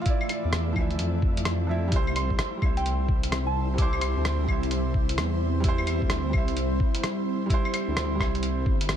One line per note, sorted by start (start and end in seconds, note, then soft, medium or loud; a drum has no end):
0.00 0.76 E3 medium
0.00 0.72 F3 medium
0.00 1.88 A3 medium
0.00 0.06 E4 medium
0.00 8.97 E4 medium
0.00 1.94 F4 loud
0.00 0.10 D5 loud
0.00 1.88 D5 medium
0.00 0.80 E5 medium
0.00 8.97 E6 medium
0.06 0.74 E4 medium
0.06 0.75 D5 loud
0.06 kick loud
0.06 closed hi-hat medium
0.21 claves medium
0.29 closed hi-hat medium
0.29 claves medium
0.44 0.75 E2 medium
0.53 cross-stick loud
0.53 closed hi-hat medium
0.72 0.98 D2 medium
0.72 1.67 E3 medium
0.72 1.65 F3 medium
0.72 kick medium
0.72 claves medium
0.80 1.69 E5 medium
0.91 closed hi-hat soft
0.99 1.91 F2 medium
0.99 closed hi-hat medium
1.22 kick loud
1.37 closed hi-hat medium
1.45 cross-stick loud
1.45 closed hi-hat medium
1.67 1.89 F3 medium
1.67 1.90 E4 medium
1.67 1.91 E5 medium
1.88 2.56 G3 loud
1.88 2.60 E4 medium
1.92 2.38 C2 loud
1.92 8.97 G3 medium
1.92 8.97 C4 medium
1.92 8.97 E4 medium
1.92 8.97 C5 medium
1.92 kick loud
1.92 closed hi-hat medium
1.96 2.62 C5 loud
2.07 claves medium
2.16 2.40 C6 medium
2.16 closed hi-hat medium
2.16 claves medium
2.30 kick medium
2.39 cross-stick loud
2.39 closed hi-hat medium
2.57 3.72 G3 medium
2.61 3.07 C2 medium
2.61 3.76 E4 medium
2.61 3.78 E5 medium
2.61 kick loud
2.61 claves medium
2.77 3.01 G5 medium
2.77 closed hi-hat soft
2.86 closed hi-hat medium
3.08 4.14 C2 medium
3.08 kick loud
3.23 closed hi-hat medium
3.32 cross-stick loud
3.32 closed hi-hat medium
3.47 3.71 A5 medium
3.74 4.42 G3 loud
3.74 4.46 E4 medium
3.78 4.48 C5 loud
3.78 4.00 D6 medium
3.78 kick loud
3.78 closed hi-hat medium
3.93 claves medium
4.01 4.48 C6 medium
4.01 closed hi-hat medium
4.01 claves medium
4.16 4.47 D2 medium
4.25 cross-stick loud
4.25 closed hi-hat medium
4.43 5.59 G3 medium
4.48 5.19 C2 medium
4.48 5.62 E4 medium
4.48 5.64 E5 medium
4.48 kick medium
4.48 claves medium
4.63 closed hi-hat soft
4.71 closed hi-hat medium
4.94 kick loud
5.09 closed hi-hat medium
5.18 6.00 E2 medium
5.18 cross-stick loud
5.18 closed hi-hat medium
5.60 6.28 G3 loud
5.60 kick loud
5.60 closed hi-hat medium
5.64 6.32 E4 loud
5.68 6.34 C5 loud
5.78 claves medium
5.87 closed hi-hat medium
5.87 claves medium
6.02 6.33 D2 medium
6.02 kick medium
6.10 cross-stick loud
6.10 closed hi-hat medium
6.30 7.44 G3 medium
6.30 claves medium
6.34 6.79 C2 medium
6.34 7.48 E4 medium
6.34 7.50 E5 medium
6.34 kick loud
6.48 closed hi-hat soft
6.57 closed hi-hat medium
6.80 kick loud
6.95 closed hi-hat medium
7.04 cross-stick loud
7.04 closed hi-hat medium
7.46 8.14 G3 loud
7.46 8.18 E4 loud
7.46 kick loud
7.50 8.20 C5 loud
7.50 closed hi-hat medium
7.65 claves medium
7.74 closed hi-hat medium
7.74 claves medium
7.88 8.19 D2 medium
7.97 cross-stick loud
7.97 closed hi-hat medium
8.15 8.97 G3 medium
8.19 8.68 C2 medium
8.19 8.97 E4 medium
8.19 kick medium
8.19 cross-stick medium
8.19 claves medium
8.23 8.97 E5 medium
8.35 closed hi-hat soft
8.43 closed hi-hat medium
8.66 8.97 G1 loud
8.66 kick loud
8.81 closed hi-hat medium
8.89 cross-stick loud
8.89 closed hi-hat medium